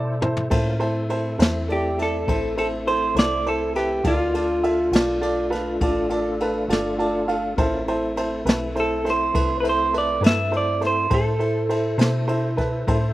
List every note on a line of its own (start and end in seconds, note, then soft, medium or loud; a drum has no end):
0.00 0.48 B2 medium
0.00 0.14 E4 medium
0.00 0.49 E4 medium
0.00 0.14 A4 soft
0.00 0.49 A4 medium
0.00 0.48 C5 medium
0.00 0.15 D5 medium
0.21 0.43 E4 medium
0.21 0.44 A4 medium
0.21 0.44 C5 medium
0.21 floor tom medium
0.37 floor tom medium
0.50 1.37 A2 medium
0.50 0.81 A#3 medium
0.50 0.81 C#4 medium
0.50 0.73 E4 medium
0.50 0.81 F4 medium
0.50 0.73 A4 medium
0.50 0.80 A#4 medium
0.50 0.73 C5 medium
0.50 kick loud
0.50 ride medium
0.79 4.01 A3 medium
0.79 4.01 C4 medium
0.79 1.02 E4 medium
0.79 4.02 E4 medium
0.79 1.02 A4 medium
0.79 4.02 A4 medium
0.79 1.02 C5 medium
0.79 ride medium
1.09 1.32 E4 medium
1.09 1.32 A4 medium
1.09 1.32 C5 medium
1.09 ride medium
1.38 2.25 E2 loud
1.38 1.61 E4 medium
1.38 1.61 A4 medium
1.38 1.61 C5 medium
1.38 snare loud
1.38 ride medium
1.68 1.91 E4 soft
1.68 2.01 G4 medium
1.68 1.91 A4 soft
1.68 1.91 D5 medium
1.68 ride medium
1.98 2.20 E4 medium
1.98 2.21 A4 soft
1.98 2.21 D5 medium
1.98 snare soft
1.98 ride medium
2.02 2.55 A4 medium
2.27 3.13 A1 medium
2.27 2.50 E4 medium
2.27 2.50 A4 soft
2.27 2.50 C5 medium
2.27 kick medium
2.27 ride medium
2.57 2.79 E4 soft
2.57 2.79 A4 soft
2.57 2.66 A4 medium
2.57 2.79 C5 medium
2.57 ride medium
2.86 3.09 E4 soft
2.86 3.09 A4 soft
2.86 3.09 C5 soft
2.86 3.17 C5 medium
2.86 ride medium
3.15 4.01 C2 medium
3.15 3.38 E4 medium
3.15 3.38 A4 soft
3.15 3.38 C5 medium
3.15 3.48 D5 medium
3.15 snare loud
3.15 ride medium
3.46 3.68 E4 soft
3.46 3.68 A4 soft
3.46 3.76 A4 medium
3.46 3.68 C5 medium
3.46 ride medium
3.75 3.97 E4 medium
3.75 4.06 G4 medium
3.75 3.97 A4 soft
3.75 3.97 B4 medium
3.75 snare soft
3.75 ride medium
4.03 4.90 D2 medium
4.03 4.33 A#3 medium
4.03 4.33 D#4 medium
4.03 4.26 F4 medium
4.03 4.33 F#4 medium
4.03 4.27 A4 medium
4.03 4.33 A#4 medium
4.03 4.27 D5 medium
4.03 kick loud
4.03 ride medium
4.08 6.38 F4 medium
4.34 7.54 A3 medium
4.34 7.55 D4 medium
4.34 4.56 F4 medium
4.34 7.55 F4 medium
4.34 7.55 A4 medium
4.34 4.56 A4 soft
4.34 4.56 D5 medium
4.34 ride medium
4.64 4.86 F4 medium
4.64 4.86 A4 soft
4.64 4.86 E5 medium
4.64 ride medium
4.92 5.78 B1 medium
4.92 5.15 F4 medium
4.92 5.15 A4 medium
4.92 5.15 D5 medium
4.92 snare loud
4.92 ride medium
5.21 5.44 F4 medium
5.21 5.44 A4 medium
5.21 5.44 D5 medium
5.21 ride medium
5.50 5.73 F4 medium
5.50 5.73 A4 medium
5.50 5.73 B4 medium
5.50 ride medium
5.55 snare soft
5.81 6.67 A1 medium
5.81 6.04 F4 medium
5.81 6.03 A4 medium
5.81 6.03 D5 medium
5.81 kick loud
5.81 ride medium
6.09 6.32 F4 medium
6.09 6.32 A4 medium
6.09 6.33 D5 medium
6.09 ride medium
6.40 6.62 F4 medium
6.40 6.63 A4 medium
6.40 6.63 B4 medium
6.40 ride medium
6.69 7.55 G1 medium
6.69 6.91 F4 medium
6.69 6.92 A4 medium
6.69 6.92 D5 medium
6.69 ride medium
6.73 snare loud
6.98 7.21 F4 medium
6.98 7.21 A4 medium
6.98 7.21 D5 medium
6.98 7.26 A5 soft
6.98 ride soft
7.28 7.50 F4 medium
7.28 7.50 A4 medium
7.28 7.50 F5 medium
7.28 ride soft
7.56 8.43 A1 medium
7.56 7.86 A#3 medium
7.56 7.86 C#4 medium
7.56 7.80 E4 medium
7.56 7.86 F4 medium
7.56 7.80 A4 medium
7.56 7.87 A#4 medium
7.56 7.80 C5 medium
7.56 kick loud
7.56 ride medium
7.85 11.07 A3 medium
7.85 11.07 C4 medium
7.85 11.07 E4 medium
7.85 8.10 E4 medium
7.85 11.07 A4 medium
7.85 8.10 A4 medium
7.85 8.10 C5 medium
7.85 ride medium
8.16 8.38 E4 medium
8.16 8.39 A4 medium
8.16 8.39 C5 medium
8.16 ride medium
8.45 9.31 B1 medium
8.45 8.68 E4 medium
8.45 8.68 A4 medium
8.45 8.68 B4 medium
8.45 snare loud
8.45 ride medium
8.75 8.97 E4 medium
8.75 8.98 A4 soft
8.75 8.98 C5 medium
8.75 ride medium
8.80 9.08 A4 medium
9.04 9.26 E4 medium
9.04 9.27 A4 medium
9.04 9.27 C5 medium
9.04 ride medium
9.08 9.60 C5 medium
9.08 snare soft
9.33 10.20 C2 medium
9.33 9.56 E4 soft
9.33 9.56 A4 soft
9.33 9.57 B4 medium
9.33 kick loud
9.33 ride medium
9.60 9.85 E4 medium
9.60 9.86 A4 soft
9.60 9.66 B4 medium
9.60 9.86 C5 medium
9.65 ride medium
9.69 9.94 C5 medium
9.93 10.15 E4 medium
9.93 10.16 A4 medium
9.93 10.16 B4 medium
9.93 ride medium
9.98 10.26 D5 medium
10.21 11.07 G2 medium
10.21 10.44 E4 medium
10.21 10.44 A4 soft
10.21 10.45 B4 medium
10.21 ride medium
10.26 10.55 E5 loud
10.26 snare loud
10.51 10.74 E4 soft
10.51 10.74 A4 soft
10.51 10.74 C5 medium
10.51 ride medium
10.57 10.85 D5 medium
10.81 11.03 E4 medium
10.81 11.03 A4 soft
10.81 11.03 C5 medium
10.81 snare soft
10.81 ride medium
10.87 11.14 C5 medium
11.10 11.96 A2 medium
11.10 11.33 E4 medium
11.10 13.13 E4 medium
11.10 13.13 A4 medium
11.10 11.33 A4 medium
11.10 13.13 A4 medium
11.10 11.33 C5 medium
11.10 13.13 C5 medium
11.10 kick loud
11.10 ride medium
11.39 11.62 E4 medium
11.39 11.62 A4 soft
11.39 11.62 C5 medium
11.39 ride soft
11.69 11.92 E4 medium
11.69 11.91 A4 medium
11.69 11.92 C5 medium
11.69 ride medium
11.98 12.84 B2 medium
11.98 12.21 E4 medium
11.98 12.21 A4 medium
11.98 12.21 C5 medium
11.98 snare loud
11.98 ride medium
12.28 12.50 E4 medium
12.28 12.50 A4 medium
12.28 12.50 C5 medium
12.28 ride medium
12.56 12.79 E4 medium
12.56 12.80 A4 medium
12.56 12.80 B4 medium
12.56 kick medium
12.56 ride medium
12.60 snare soft
12.87 13.13 A2 medium
12.87 13.09 E4 medium
12.87 13.10 A4 medium
12.87 13.10 C5 medium
12.87 kick medium
12.87 ride medium